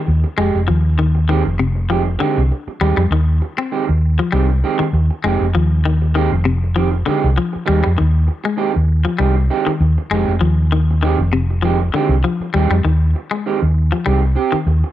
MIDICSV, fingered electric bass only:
0, 0, Header, 1, 3, 480
1, 0, Start_track
1, 0, Tempo, 607903
1, 300, Time_signature, 4, 2, 24, 8
1, 11782, End_track
2, 0, Start_track
2, 0, Title_t, "Fingered electric bass"
2, 0, Program_c, 0, 33
2, 63, Note_on_c, 0, 39, 90
2, 184, Note_off_c, 0, 39, 0
2, 298, Note_on_c, 0, 29, 89
2, 421, Note_off_c, 0, 29, 0
2, 429, Note_on_c, 0, 29, 80
2, 533, Note_off_c, 0, 29, 0
2, 544, Note_on_c, 0, 39, 86
2, 1120, Note_off_c, 0, 39, 0
2, 1149, Note_on_c, 0, 29, 81
2, 1708, Note_off_c, 0, 29, 0
2, 1877, Note_on_c, 0, 36, 84
2, 1978, Note_off_c, 0, 36, 0
2, 2220, Note_on_c, 0, 39, 88
2, 2342, Note_off_c, 0, 39, 0
2, 2346, Note_on_c, 0, 41, 85
2, 2447, Note_off_c, 0, 41, 0
2, 2452, Note_on_c, 0, 39, 91
2, 2682, Note_off_c, 0, 39, 0
2, 3072, Note_on_c, 0, 39, 72
2, 3297, Note_off_c, 0, 39, 0
2, 3419, Note_on_c, 0, 36, 88
2, 3646, Note_off_c, 0, 36, 0
2, 3894, Note_on_c, 0, 39, 86
2, 4019, Note_off_c, 0, 39, 0
2, 4137, Note_on_c, 0, 29, 89
2, 4261, Note_off_c, 0, 29, 0
2, 4268, Note_on_c, 0, 29, 78
2, 4373, Note_off_c, 0, 29, 0
2, 4385, Note_on_c, 0, 39, 78
2, 4961, Note_off_c, 0, 39, 0
2, 4990, Note_on_c, 0, 29, 85
2, 5548, Note_off_c, 0, 29, 0
2, 5719, Note_on_c, 0, 36, 81
2, 5819, Note_off_c, 0, 36, 0
2, 6069, Note_on_c, 0, 39, 90
2, 6187, Note_off_c, 0, 39, 0
2, 6209, Note_on_c, 0, 41, 83
2, 6304, Note_off_c, 0, 41, 0
2, 6319, Note_on_c, 0, 39, 93
2, 6537, Note_off_c, 0, 39, 0
2, 6918, Note_on_c, 0, 39, 73
2, 7141, Note_off_c, 0, 39, 0
2, 7261, Note_on_c, 0, 36, 94
2, 7487, Note_off_c, 0, 36, 0
2, 7741, Note_on_c, 0, 39, 94
2, 7863, Note_off_c, 0, 39, 0
2, 7978, Note_on_c, 0, 29, 97
2, 8101, Note_off_c, 0, 29, 0
2, 8114, Note_on_c, 0, 29, 78
2, 8216, Note_off_c, 0, 29, 0
2, 8224, Note_on_c, 0, 39, 85
2, 8800, Note_off_c, 0, 39, 0
2, 8832, Note_on_c, 0, 29, 84
2, 9389, Note_off_c, 0, 29, 0
2, 9546, Note_on_c, 0, 36, 84
2, 9652, Note_off_c, 0, 36, 0
2, 9907, Note_on_c, 0, 39, 91
2, 10026, Note_off_c, 0, 39, 0
2, 10032, Note_on_c, 0, 41, 89
2, 10135, Note_off_c, 0, 41, 0
2, 10145, Note_on_c, 0, 39, 93
2, 10369, Note_off_c, 0, 39, 0
2, 10758, Note_on_c, 0, 39, 76
2, 10980, Note_off_c, 0, 39, 0
2, 11107, Note_on_c, 0, 36, 84
2, 11329, Note_off_c, 0, 36, 0
2, 11579, Note_on_c, 0, 39, 83
2, 11701, Note_off_c, 0, 39, 0
2, 11782, End_track
3, 0, Start_track
3, 0, Title_t, "Muted fingered electric bass strokes"
3, 1747, Note_on_c, 9, 29, 35
3, 1826, Note_off_c, 9, 29, 0
3, 2110, Note_on_c, 9, 29, 31
3, 2189, Note_off_c, 9, 29, 0
3, 3789, Note_on_c, 9, 29, 37
3, 3868, Note_off_c, 9, 29, 0
3, 5966, Note_on_c, 9, 29, 33
3, 6045, Note_off_c, 9, 29, 0
3, 7635, Note_on_c, 9, 29, 36
3, 7714, Note_off_c, 9, 29, 0
3, 9424, Note_on_c, 9, 29, 34
3, 9503, Note_off_c, 9, 29, 0
3, 9793, Note_on_c, 9, 29, 32
3, 9872, Note_off_c, 9, 29, 0
3, 11476, Note_on_c, 9, 29, 36
3, 11555, Note_off_c, 9, 29, 0
3, 11782, End_track
0, 0, End_of_file